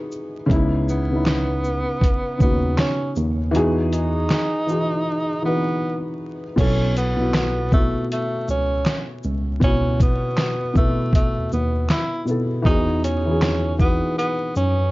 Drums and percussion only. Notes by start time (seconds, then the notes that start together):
0.12 shaker
0.50 kick, closed hi-hat
0.89 shaker
1.26 snare, clap, closed hi-hat
1.64 shaker
2.01 kick, closed hi-hat
2.40 kick, shaker
2.78 snare, clap, closed hi-hat
3.16 shaker
3.55 closed hi-hat
3.93 closed hi-hat, shaker
4.30 snare, clap, closed hi-hat
4.68 shaker
6.58 kick, closed hi-hat, crash
6.97 closed hi-hat, shaker
7.34 snare, clap, closed hi-hat
7.72 kick, shaker
8.12 closed hi-hat
8.48 shaker
8.86 snare, clap, closed hi-hat
9.23 shaker
9.61 kick, closed hi-hat
10.00 kick, closed hi-hat, shaker
10.38 snare, clap, closed hi-hat
10.76 kick, shaker
11.13 kick, closed hi-hat
11.52 shaker
11.90 snare, clap, closed hi-hat
12.27 shaker
12.65 kick, closed hi-hat
13.04 closed hi-hat, shaker
13.42 snare, clap, closed hi-hat
13.79 kick, shaker
14.19 closed hi-hat
14.56 shaker